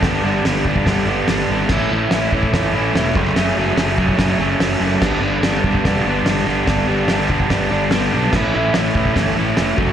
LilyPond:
<<
  \new Staff \with { instrumentName = "Overdriven electric guitar" } { \clef bass \time 4/4 \key a \mixolydian \tempo 4 = 145 <g, d g b d'>8 <g, d g b d'>8 <g, d g b d'>8 <g, d g b d'>8 <g, d g b d'>8 <g, d g b d'>8 <g, d g b d'>8 <g, d g b d'>8 | <a, e a cis' e'>8 <a, e a cis' e'>8 <a, e a cis' e'>8 <a, e a cis' e'>8 <a, e a cis' e'>8 <a, e a cis' e'>8 <a, e a cis' e'>8 <fis, cis fis a cis'>8 | <fis, cis fis a cis'>8 <fis, cis fis a cis'>8 <fis, cis fis a cis'>8 <fis, cis fis a cis'>8 <fis, cis fis a cis'>8 <fis, cis fis a cis'>8 <fis, cis fis a cis'>8 <fis, cis fis a cis'>8 | <g, d g b d'>8 <g, d g b d'>8 <g, d g b d'>8 <g, d g b d'>8 <g, d g b d'>8 <g, d g b d'>8 <g, d g b d'>8 <g, d g b d'>8 |
<g, d g b d'>8 <g, d g b d'>8 <g, d g b d'>8 <g, d g b d'>8 <g, d g b d'>8 <g, d g b d'>8 <g, d g b d'>8 <g, d g b d'>8 | <a, e a cis' e'>8 <a, e a cis' e'>8 <a, e a cis' e'>8 <a, e a cis' e'>8 <a, e a cis' e'>8 <a, e a cis' e'>8 <a, e a cis' e'>8 <fis a cis' fis'>8 | }
  \new Staff \with { instrumentName = "Fingered electric bass" } { \clef bass \time 4/4 \key a \mixolydian g,,8 g,,8 g,,4 g,,8 g,,8 g,,8 gis,,8 | a,,8 a,,8 a,,8 a,8 g,,8 a,,8 e,,8 fis,,8 | fis,,8 fis,,8 fis,,4 fis,,8 fis,,8 fis,,8 fis,,8 | g,,8 g,,8 g,,8 g,8 e,,8 g,,8 g,,8 g,,8 |
g,,8 g,,8 g,,4 g,,8 g,,8 g,,8 b,,8 | a,,8 a,,8 a,,8 a,8 g,,8 a,,8 f,,8 fis,,8 | }
  \new DrumStaff \with { instrumentName = "Drums" } \drummode { \time 4/4 <hho bd sn>4 <hho sn>8 bd16 bd16 <hho bd sn>4 <hho sn>4 | <cymc bd sn>4 <hho sn>8 bd16 bd16 <hho bd sn>4 <hho sn>8 bd8 | <hho sn>4 <hho sn>8 bd16 bd16 <hho bd sn>4 <hho sn>4 | <cymc bd sn>4 <hho sn>8 bd16 bd16 <hho bd sn>4 <hho sn>4 |
<hho bd sn>4 <hho sn>8 bd16 bd16 <hho bd sn>4 <hho sn>4 | <cymc bd sn>4 <hho sn>8 bd16 bd16 <hho bd sn>4 <hho sn>8 bd8 | }
>>